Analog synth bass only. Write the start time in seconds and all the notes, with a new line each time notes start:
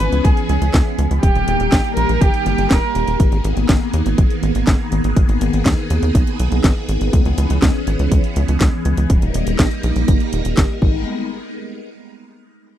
0.12 C#2
0.25 C#2
0.49 C#2
0.61 C#2
0.74 C#2
0.98 C#2
1.11 C#2
1.23 D#1
1.35 D#1
1.48 D#1
1.60 D#1
1.72 A#1
1.97 A#1
2.09 A#1
2.21 G1
2.46 G1
2.58 G1
2.71 D#1
2.95 D#1
3.07 D#1
3.20 G#1
3.32 G#1
3.44 G#1
3.57 G#1
3.69 G#1
3.94 D#2
4.06 G#1
4.18 G#1
4.43 G#1
4.55 G#1
4.67 G#1
4.92 G#1
5.04 G#1
5.16 G#1
5.29 G#1
5.41 G#1
5.53 G#1
5.66 D#2
5.90 D#2
6.03 D#2
6.15 B1
6.39 B1
6.52 B1
6.64 G#1
6.88 G#1
7.01 G#1
7.13 C#2
7.25 C#2
7.38 C#2
7.50 C#2
7.62 C#2
7.87 G#1
7.99 C#2
8.11 C#2
8.36 C#2
8.48 C#2
8.61 C#2
8.85 C#2
8.97 C#2
9.10 D#1
9.22 D#1
9.34 D#1
9.46 D#1
9.59 A#1
9.83 A#1
9.96 A#1
10.08 G1
10.33 D#1
10.45 D#1
10.57 G1
10.82 G#1